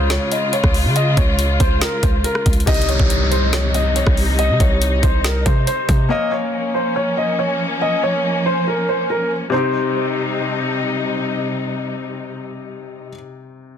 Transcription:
0.00 0.18 C#2 loud
0.00 2.63 C#3 medium
0.00 2.64 C#3 medium
0.00 2.64 G#3 medium
0.00 2.63 C#4 medium
0.00 2.64 F4 medium
0.00 2.64 F4 loud
0.00 2.64 G#4 medium
0.10 0.30 C#5 medium
0.10 cross-stick medium
0.10 snare loud
0.10 closed hi-hat medium
0.31 0.51 D#5 medium
0.31 closed hi-hat medium
0.53 0.73 C#5 medium
0.53 closed hi-hat medium
0.64 0.87 C#2 loud
0.64 kick medium
0.64 cross-stick medium
0.74 open hi-hat medium
0.85 1.16 C#3 loud
0.96 1.16 D#5 medium
0.96 closed hi-hat medium
1.17 1.58 C#2 loud
1.17 1.57 C#5 medium
1.17 kick loud
1.17 closed hi-hat medium
1.39 closed hi-hat loud
1.60 1.81 C#2 loud
1.60 1.80 C5 medium
1.60 kick loud
1.60 closed hi-hat medium
1.81 2.02 A#4 loud
1.81 snare loud
1.81 closed hi-hat medium
2.03 2.24 C#2 loud
2.03 2.23 C5 medium
2.03 kick loud
2.03 closed hi-hat medium
2.24 2.44 A#4 medium
2.24 closed hi-hat medium
2.35 cross-stick medium
2.46 2.66 C#2 loud
2.46 kick medium
2.46 closed hi-hat medium
2.53 closed hi-hat medium
2.60 closed hi-hat medium
2.66 2.98 C2 loud
2.66 6.05 C3 medium
2.66 6.07 C3 medium
2.66 6.06 G3 medium
2.66 6.07 G3 medium
2.66 6.07 D#4 medium
2.66 6.06 D#4 medium
2.66 2.87 D#5 loud
2.66 6.07 D#5 medium
2.66 kick loud
2.66 closed hi-hat medium
2.66 crash medium
2.66 downlifter medium
2.74 closed hi-hat medium
2.82 closed hi-hat medium
2.89 3.29 C#5 medium
2.89 closed hi-hat medium
2.99 4.03 C2 loud
2.99 kick loud
3.10 closed hi-hat medium
3.31 3.51 C5 medium
3.31 closed hi-hat medium
3.53 3.73 C#5 medium
3.53 cross-stick medium
3.53 snare loud
3.53 closed hi-hat medium
3.74 3.94 D#5 medium
3.74 closed hi-hat medium
3.96 4.16 C#5 medium
3.96 closed hi-hat medium
4.07 4.51 C2 loud
4.07 kick medium
4.07 cross-stick medium
4.17 open hi-hat soft
4.39 4.59 D#5 loud
4.39 closed hi-hat medium
4.49 4.60 C3 loud
4.60 5.01 C2 loud
4.60 5.00 C#5 medium
4.60 kick medium
4.60 closed hi-hat medium
4.82 closed hi-hat medium
5.03 5.44 C2 loud
5.03 5.23 C5 medium
5.03 kick medium
5.03 closed hi-hat medium
5.24 5.44 A#4 medium
5.24 snare loud
5.24 closed hi-hat medium
5.46 5.66 C3 loud
5.46 5.66 C5 medium
5.46 kick loud
5.46 closed hi-hat medium
5.67 6.08 C5 medium
5.67 closed hi-hat medium
5.89 6.09 C3 loud
5.89 kick medium
5.89 closed hi-hat medium
6.09 9.50 F3 medium
6.09 9.48 A#3 medium
6.09 9.50 A#3 medium
6.09 9.50 C#4 medium
6.09 9.49 A#4 medium
6.09 9.49 C#5 medium
6.09 6.30 D#5 loud
6.09 9.50 F5 medium
6.32 6.72 C#5 medium
6.74 6.94 C5 medium
6.96 7.16 C#5 medium
7.17 7.37 D#5 medium
7.39 7.59 C#5 medium
7.81 8.02 D#5 loud
8.03 8.43 C#5 medium
8.46 8.66 C5 medium
8.67 8.87 A#4 medium
8.89 9.09 C5 medium
9.10 9.30 A#4 medium
9.50 13.07 C3 medium
9.50 13.10 C3 medium
9.50 13.10 G3 medium
9.50 13.09 C4 medium
9.50 13.10 D#4 medium
9.50 10.78 C5 medium
9.54 13.11 D#4 medium
9.54 13.14 G4 medium

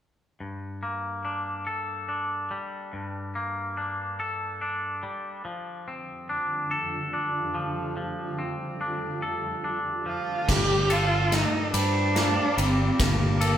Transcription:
0.40 2.51 G2 soft
0.83 2.93 A#3 soft
1.25 2.08 D4 soft
1.67 4.19 A4 soft
2.09 3.77 D4 soft
2.51 4.61 G3 soft
2.93 5.03 G2 soft
3.35 5.45 A#3 soft
3.77 4.61 D4 soft
4.20 6.71 A4 soft
4.61 5.91 D4 soft
5.03 5.44 G3 soft
5.45 10.45 F2 medium
5.45 10.45 D3 medium
5.45 7.53 F3 soft
5.45 10.45 G3 medium
5.45 10.45 A3 medium
5.45 10.45 F4 medium
5.88 7.97 C4 soft
6.29 7.12 D4 soft
6.71 8.81 A4 soft
7.13 8.80 D4 soft
7.55 7.95 F3 soft
7.97 10.05 F3 soft
8.39 10.48 C4 soft
8.81 9.63 D4 soft
9.22 10.48 A4 soft
9.64 10.48 D4 soft
10.06 10.48 F3 soft
10.06 10.51 F4 medium
10.48 11.43 G1 medium
10.48 12.58 G2 medium
10.48 13.58 G4 medium
10.48 10.93 G4 medium
10.48 13.58 A5 medium
10.48 13.58 D6 medium
10.48 kick medium
10.48 snare soft
10.48 crash medium
10.90 11.35 F4 medium
10.90 13.02 A4 medium
10.90 ride medium
11.32 11.73 D#4 medium
11.32 snare soft
11.32 ride medium
11.73 12.37 G2 medium
11.73 12.56 G3 medium
11.73 12.60 D4 medium
11.73 12.58 C5 medium
11.73 ride medium
12.15 13.58 A#3 soft
12.15 snare soft
12.15 ride medium
12.57 12.89 G1 medium
12.57 13.58 G3 medium
12.57 13.01 C4 medium
12.57 ride medium
12.99 13.58 G1 medium
12.99 13.58 G2 medium
12.99 13.58 A#3 medium
12.99 kick medium
12.99 snare soft
12.99 ride medium
13.41 13.58 A4 medium
13.41 13.58 A#4 medium
13.41 ride medium

